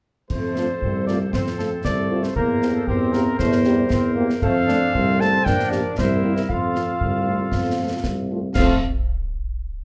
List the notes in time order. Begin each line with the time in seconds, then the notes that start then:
0.30 F2 A3 A4 C5, concert bass drum, crash
0.56 A3 C4 D4 F4, snare
0.82 C2 C4, concert bass drum
1.07 A3 A#3 C4 F4 D5, snare
1.32 F2 C4 A4 C5, concert bass drum, snare
1.47 snare
1.58 A3 C4 F4 A4, snare
1.85 C2 A3 D5, concert bass drum, snare
2.10 A3 C4 F4
2.23 C5, snare
2.36 E2 A#3 A#4 C5, concert bass drum
2.62 A#3 C4 G4, snare
2.75 A4
2.87 E2 C4 G4 A#4 C5, concert bass drum
3.13 A#3 C4 G4 A#4, snare
3.37 E2 A3 A#4 C5, concert bass drum, snare
3.52 snare
3.64 G3 A#3 C4 G4, snare
3.90 E2 C4, concert bass drum, snare
4.14 A#3 C4 G4
4.30 snare
4.40 F2 A3 A4 C5 F5, concert bass drum, crash
4.66 A3 C4 D4 A4, snare
4.93 C2 C4, concert bass drum
5.20 A3 C4 A4 A5, snare
5.45 A#1 D4 A#4 D5 G5, concert bass drum, snare
5.59 snare
5.71 A#3 D4 G4 D5, snare
5.97 C2 E4 A#4 C5 E5, concert bass drum, snare
6.23 A#3 E4 G4
6.36 E5, snare
6.48 F2 F4 A4 F5, concert bass drum
6.75 A3 C4 F4, snare
7.01 C2, concert bass drum
7.27 A3 C4 F4
7.52 F2, concert bass drum, snare
7.78 A3 C4 F4
8.04 C2, concert bass drum, snare
8.30 A3 C4 F4
8.54 F2 C3 A3 C4 F4 A4 F5, concert bass drum, snare, crash